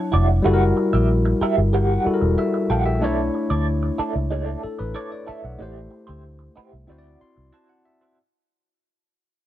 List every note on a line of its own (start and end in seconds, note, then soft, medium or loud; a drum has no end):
0.00 0.40 F#3 medium
0.00 0.40 D4 medium
0.00 0.41 E4 medium
0.00 0.42 C#5 medium
0.00 0.27 A5 medium
0.12 0.39 F1 medium
0.12 0.27 E4 medium
0.12 0.28 F#4 medium
0.12 0.28 D5 medium
0.28 muted clean electric guitar stroke soft
0.42 0.71 F#1 loud
0.42 2.01 G3 medium
0.42 2.02 E4 medium
0.42 2.03 F#4 medium
0.42 0.64 G4 medium
0.42 0.64 A#4 medium
0.42 0.64 F#5 medium
0.47 0.52 A4 medium
0.54 2.07 A#4 medium
0.77 muted clean electric guitar stroke soft
0.93 1.32 A#1 medium
0.93 1.09 G4 soft
0.93 1.08 A#4 soft
0.93 1.08 E5 medium
1.25 muted clean electric guitar stroke soft
1.41 1.60 G4 medium
1.41 1.57 A#4 medium
1.41 1.56 E5 medium
1.41 muted fingered electric bass stroke soft
1.57 1.97 G1 medium
1.57 muted clean electric guitar stroke soft
1.73 2.03 G4 medium
1.73 2.03 A#4 medium
1.73 2.04 F#5 medium
2.05 3.02 G3 medium
2.05 3.01 E4 medium
2.05 3.03 F#4 soft
2.05 2.13 A4 medium
2.05 muted clean electric guitar stroke soft
2.05 muted fingered electric bass stroke soft
2.14 3.06 A#4 medium
2.21 2.35 E1 medium
2.21 muted clean electric guitar stroke soft
2.38 2.69 E5 medium
2.38 muted clean electric guitar stroke soft
2.54 muted clean electric guitar stroke soft
2.70 3.02 A#1 medium
2.70 2.90 G4 medium
2.70 2.86 A#4 medium
2.70 2.86 F#5 medium
2.70 2.85 G5 medium
2.86 3.16 E5 medium
2.86 muted clean electric guitar stroke soft
2.99 3.28 B1 loud
2.99 5.54 A3 medium
2.99 5.55 D4 medium
2.99 3.21 E4 medium
2.99 5.56 E4 medium
2.99 3.21 A4 medium
3.03 4.61 C#5 medium
3.03 3.22 D5 medium
3.34 muted clean electric guitar stroke soft
3.50 3.90 D2 medium
3.50 3.66 E4 soft
3.50 3.66 A4 medium
3.50 3.65 D5 medium
3.83 muted clean electric guitar stroke soft
3.98 4.18 E4 medium
3.98 4.14 A4 medium
3.98 4.13 D5 medium
3.98 muted fingered electric bass stroke soft
4.15 4.54 C#2 medium
4.15 muted clean electric guitar stroke soft
4.30 4.43 D#4 medium
4.30 4.43 G#4 medium
4.30 4.44 C#5 medium
4.43 4.60 E4 medium
4.43 4.61 A4 medium
4.43 4.61 D5 medium
4.63 4.79 A4 medium
4.63 muted clean electric guitar stroke soft
4.63 muted fingered electric bass stroke soft
4.79 4.93 A1 medium
4.79 4.94 B4 medium
4.79 muted clean electric guitar stroke soft
4.94 5.14 E4 medium
4.94 5.10 A4 medium
4.94 5.11 C#5 medium
4.94 5.09 D5 medium
5.11 5.27 D5 medium
5.11 muted clean electric guitar stroke soft
5.26 5.42 E4 medium
5.26 5.42 A4 medium
5.26 5.42 E5 medium
5.26 5.43 E5 medium
5.26 muted fingered electric bass stroke soft
5.42 5.57 B1 medium
5.42 5.75 F#5 medium
5.42 muted clean electric guitar stroke soft
5.58 5.86 A1 medium
5.58 6.85 A3 medium
5.58 5.79 E4 medium
5.58 6.86 E4 medium
5.58 5.80 G4 medium
5.58 6.87 G4 medium
5.58 6.87 C5 medium
5.58 5.80 D5 medium
5.90 muted clean electric guitar stroke soft
6.07 6.48 D2 medium
6.07 6.23 E4 soft
6.07 6.23 G4 soft
6.07 6.22 C5 medium
6.39 muted clean electric guitar stroke soft
6.56 6.76 E4 medium
6.56 6.72 G4 medium
6.56 6.71 C5 medium
6.56 muted fingered electric bass stroke soft
6.72 6.86 C2 medium
6.72 muted clean electric guitar stroke soft
6.87 7.15 D2 loud
6.87 8.14 C4 medium
6.87 7.18 E4 medium
6.87 8.15 E4 medium
6.87 7.18 F#4 medium
6.87 8.16 F#4 medium
6.87 7.19 D5 medium
6.92 6.97 C5 medium
6.98 8.20 D5 medium
7.20 7.51 C6 medium
7.20 muted clean electric guitar stroke soft
7.37 7.50 C2 medium
7.37 muted clean electric guitar stroke soft
7.53 7.72 E4 medium
7.53 7.72 F#4 medium
7.53 7.73 C5 medium
7.53 7.68 A5 medium
7.69 7.84 F#5 medium
7.85 8.15 E5 medium
7.85 muted clean electric guitar stroke soft
8.01 8.17 E4 soft
8.01 8.17 F#4 soft
8.01 8.16 C5 soft